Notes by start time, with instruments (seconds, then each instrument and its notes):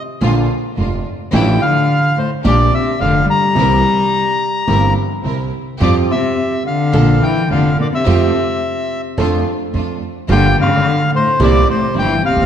0.21 upright bass A#1, grand piano A#1 A#2 D3 F3 A#3 F4, string section A#3 D4 F4
0.77 upright bass F1, grand piano F1 F2, string section A#3 D4 F4
1.32 upright bass A1, grand piano A1 A2 E3 A3 D4 F4, cello E3, string section F3 D4 E4, bandoneon G5
1.60 cello D3, bandoneon F5
2.17 cello A2, bandoneon C5
2.44 grand piano A#1 A#2 F3 A#3 D4 G4, upright bass A#1, cello A#2, string section A#3 D4 G4, bandoneon D5
2.73 cello C3, bandoneon E5
3.00 grand piano F1 F2, upright bass F1, cello D3, string section A#3 D4 G4, bandoneon F5
3.29 cello G3, bandoneon A#5
3.55 grand piano C2 C3 E3 A#3 C4 G4, upright bass C2, string section C4 E4 A#4
4.67 upright bass G1, grand piano G1 G2 E3 A#3 C4 G4, string section C4 E4 A#4
5.24 upright bass C2, grand piano C2 C3, string section C4 E4 A#4
5.81 upright bass F2, grand piano F2 F3 G3 C4 G4, cello G2, string section C4 F4 G4, bandoneon D5
6.11 cello C3, bandoneon E5
6.67 cello D3, bandoneon F5
6.93 upright bass A#1, grand piano A#1 A#2 F3 A#3 D4 A4, string section A#3 D4 A4
7.22 cello E3, bandoneon G5
7.50 upright bass F1, grand piano F1 F2, cello D3, string section A#3 D4 A4, bandoneon F5
7.80 cello A#2, bandoneon D5
7.93 cello C3, bandoneon E5
8.06 grand piano F2 F3 A3 C4 G4, upright bass F2, string section A3 F4 G4
9.18 upright bass F2, grand piano F2 F3 A3 D4 A4, string section A3 D4 F4
9.74 upright bass F2, grand piano F2 F3, string section A3 D4 F4
10.29 upright bass G1, grand piano G1 G2 F3 A#3 D4 G4, cello D3, string section G3 A#3 F4, bandoneon G5
10.58 cello D3, bandoneon F5
11.15 cello A2, bandoneon C5
11.40 upright bass C2, grand piano C2 C3 E3 A#3 C4 G4, cello A#2, string section A#3 C4 E4
11.44 bandoneon D5
11.69 cello A2, bandoneon C5
11.95 upright bass G1, grand piano G1 G2, cello E3, string section A#3 C4 E4
11.99 bandoneon G5
12.25 upright bass D2, cello C3, bandoneon F5
12.30 grand piano D2
12.36 upright bass D#2, grand piano D#2
12.42 upright bass E2